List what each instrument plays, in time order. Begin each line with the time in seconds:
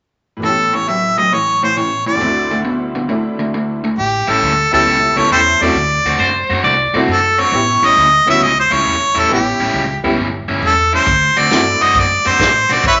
0.37 honky-tonk piano A2 E3
0.42 overdriven electric guitar A2 E3, honky-tonk piano B3 C#4, harmonica A4
0.48 honky-tonk piano G4
0.73 overdriven electric guitar A2 E3, harmonica C#5
0.88 overdriven electric guitar A2 F#3, harmonica E5
1.18 overdriven electric guitar A2 F#3, harmonica D#5
1.33 overdriven electric guitar A2 E3, harmonica C#5
1.63 overdriven electric guitar A2 E3, harmonica C5
1.77 overdriven electric guitar A2 E3, harmonica C#5
2.06 overdriven electric guitar A2 E3, harmonica D5
2.15 honky-tonk piano D2 D3
2.21 overdriven electric guitar D3 A3, honky-tonk piano C4 E4
2.26 honky-tonk piano F#4
2.51 overdriven electric guitar D3 A3
2.65 overdriven electric guitar D3 B3
2.95 overdriven electric guitar D3 B3
3.08 honky-tonk piano D3 A3 D4 E4, overdriven electric guitar D3 A3
3.39 overdriven electric guitar D3 A3
3.54 overdriven electric guitar D3 A3
3.84 overdriven electric guitar D3 A3
3.98 upright bass A1, harmonica G4
4.27 upright bass A1, overdriven electric guitar A2 G3 C#4 E4, harmonica A4
4.42 upright bass D2
4.72 upright bass D2, overdriven electric guitar A2 G3 C#4 E4, honky-tonk piano B3 C#4 E4 G4, harmonica A4
4.86 upright bass C#2
5.16 upright bass C#2, overdriven electric guitar A2 G3 C#4 E4, honky-tonk piano B3 C#4 E4 A4, harmonica C#5
5.31 upright bass E2, harmonica G4 A4 C5
5.61 upright bass E2, overdriven electric guitar A2 G3 C#4 E4, honky-tonk piano A3 C4 E4 F#4, harmonica D5
5.75 upright bass D2
6.05 upright bass D2, overdriven electric guitar D3 A3 C4 F#4
6.19 upright bass F#2, clean electric guitar C5
6.49 upright bass F#2, overdriven electric guitar D3 A3 C4 F#4
6.64 upright bass C2, clean electric guitar D5
6.93 upright bass C2, overdriven electric guitar D3 A3 C4 F#4, honky-tonk piano A3 C4 E4 F#4
7.07 upright bass F#2, harmonica A4
7.39 overdriven electric guitar D3 A3 C4 F#4, harmonica C#5
7.52 upright bass A1, honky-tonk piano B3 C#4 E4 G4
7.82 upright bass A1, overdriven electric guitar A2 G3 C#4 E4, harmonica D#5
7.96 upright bass D2
8.26 upright bass D2, overdriven electric guitar A2 G3 C#4 E4, honky-tonk piano B3 C#4 E4 F#4
8.30 harmonica E5
8.40 upright bass C#2, harmonica D#5
8.60 harmonica C5
8.70 upright bass C#2, overdriven electric guitar A2 G3 C#4 E4, harmonica C#5
8.85 upright bass E2
9.15 upright bass E2, overdriven electric guitar A2 G3 C#4 E4
9.19 harmonica A4
9.29 upright bass A1, honky-tonk piano B3 C#4 E4 G4, harmonica G4
9.59 upright bass A1, overdriven electric guitar A2 G3 C#4 E4
9.74 upright bass C#2
10.04 upright bass C#2, overdriven electric guitar A2 G3 C#4 E4, honky-tonk piano B3 C#4 E4 G4
10.18 upright bass G1
10.48 upright bass G1, overdriven electric guitar A2 G3 C#4 E4
10.61 upright bass E2, harmonica A4
10.93 overdriven electric guitar A2 G3 C#4 E4, harmonica C5
11.06 upright bass D2, kick, closed hi-hat
11.36 upright bass D2, overdriven electric guitar D3 A3 C4 F#4, harmonica D5, closed hi-hat
11.50 upright bass G2, honky-tonk piano A3 C4 E4 F#4, snare, closed hi-hat
11.80 upright bass G2, overdriven electric guitar D3 A3 C4 F#4, harmonica D#5, closed hi-hat
11.95 upright bass F#2, kick, closed hi-hat
11.99 harmonica D5
12.25 upright bass F#2, overdriven electric guitar D3 A3 C4 F#4, harmonica C5, closed hi-hat
12.39 upright bass A2, kick, snare, closed hi-hat
12.69 upright bass B1, overdriven electric guitar D3 A3 C4 F#4, harmonica D5, snare, closed hi-hat
12.84 upright bass A1, harmonica B4 C#5 E5, kick, closed hi-hat